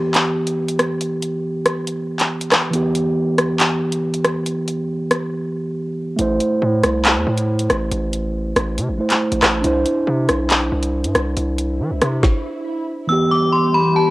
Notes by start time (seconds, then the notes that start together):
Already playing: E3 B3 G4
0.14 clap, closed hi-hat
0.47 closed hi-hat
0.68 closed hi-hat
0.79 cross-stick, closed hi-hat
1.01 closed hi-hat
1.22 closed hi-hat
1.66 cross-stick, closed hi-hat
1.87 closed hi-hat
2.20 clap, closed hi-hat
2.41 closed hi-hat
2.52 cross-stick, clap, closed hi-hat
2.71 E3 B3, closed hi-hat
2.76 G4
2.95 closed hi-hat
3.38 cross-stick, closed hi-hat
3.60 clap, closed hi-hat
3.92 closed hi-hat
4.14 closed hi-hat
4.25 cross-stick, closed hi-hat
4.46 closed hi-hat
4.68 closed hi-hat
5.11 cross-stick, closed hi-hat
6.17 A1 A3 E4, closed hi-hat
6.21 C5
6.40 closed hi-hat
6.62 A2
6.84 C2, cross-stick, closed hi-hat
7.05 clap, closed hi-hat
7.16 E2
7.27 A2
7.38 closed hi-hat
7.59 closed hi-hat
7.70 A1, cross-stick, closed hi-hat
7.91 A1, closed hi-hat
8.13 closed hi-hat
8.56 A1, cross-stick, closed hi-hat
8.78 C3, closed hi-hat
8.89 A1
8.98 A3 E4 C5
9.10 clap, closed hi-hat
9.32 A1, closed hi-hat
9.43 A1, cross-stick, clap, closed hi-hat
9.62 C2 D4 E4, closed hi-hat
9.67 C5
9.86 closed hi-hat
10.07 C3
10.29 B1, cross-stick, closed hi-hat
10.50 clap, closed hi-hat
10.72 C2
10.83 closed hi-hat
11.04 G2, closed hi-hat
11.15 C2, cross-stick, closed hi-hat
11.37 C2, closed hi-hat, swell
11.58 closed hi-hat
11.80 E3
11.91 C2
12.02 C3, cross-stick, closed hi-hat
12.23 kick, snare
13.07 E3 G3 B3 G4 E6
13.12 G4
13.31 D6
13.53 C6
13.74 B5
13.96 A5